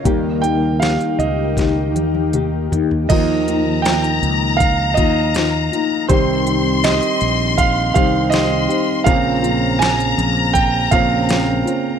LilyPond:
<<
  \new Staff \with { instrumentName = "Violin section" } { \time 4/4 \key ees \mixolydian \tempo 4 = 80 r1 | bes''1 | c'''2. c'''4 | bes''1 | }
  \new Staff \with { instrumentName = "Ambient pad" } { \time 4/4 \key ees \mixolydian <ees' g' bes' g''>1 | r1 | r1 | r1 | }
  \new Staff \with { instrumentName = "Nylon-string guitar" } { \time 4/4 \key ees \mixolydian <ees bes ees' g'>8 <bes ees' g'>8 <ees bes ees' g'>4 <ees bes ees' g'>8 <bes ees' g'>8 <ees bes ees' g'>8 <bes ees' g'>8 | <ees bes ees' f'>8 <bes ees' f'>8 <ees bes ees' f'>4. <bes ees' f'>8 <ees bes ees' f'>8 <bes ees' f'>8 | <c ees c' ees' g'>8 <c' ees' g'>8 <ees c' ees' g'>4. <c' ees' g'>8 <ees c' ees' g'>8 <c' ees' g'>8 | <bes, f c' des' f'>8 <c' des' f'>8 <f c' des' f'>4. <c' des' f'>8 <f c' des' f'>8 <c' des' f'>8 | }
  \new Staff \with { instrumentName = "Grand piano" } { \time 4/4 \key ees \mixolydian r8 g''8 f''8 ees''2 r8 | ees''4 g''4 f''8 ees''4 r8 | c''4 ees''4 f''8 f''8 ees''8. r16 | f''4 aes''4 g''8 f''4 r8 | }
  \new Staff \with { instrumentName = "Grand piano" } { \clef bass \time 4/4 \key ees \mixolydian <ees g bes>1 | <ees f bes>8 r2. r8 | <ees g c'>4. r4 <ees g c'>8 r4 | <des bes c'>8 r2 <des bes c'>8 r4 | }
  \new Staff \with { instrumentName = "Fretless electric bass" } { \clef bass \time 4/4 \key ees \mixolydian ees,4~ ees,16 r16 des,4 ees,4 ees,8 | ees,4. des,4 ees,4 r8 | c,4~ c,16 r16 bes,,4 c,4 r8 | bes,,4. bes,,4 bes,,4 r8 | }
  \new DrumStaff \with { instrumentName = "Drums" } \drummode { \time 4/4 <hh bd>8 hh8 <hh sn>16 hh16 hh8 <hh bd sn>8 <hh tommh>16 tommh16 <hh toml>8 <hh tomfh>16 tomfh16 | <cymc hh bd>8 hh8 <hh sn>16 hh16 hh8 <hh bd>8 <hh bd>8 <hh sn>8 hh8 | <hh bd>8 hh8 <hh sn>16 hh16 hh8 <hh bd>8 <hh bd>8 <hh sn>8 hh8 | <hh bd>8 hh8 <hh sn>16 hh16 hh8 <hh bd>8 <hh bd>8 <hh sn>8 hh8 | }
>>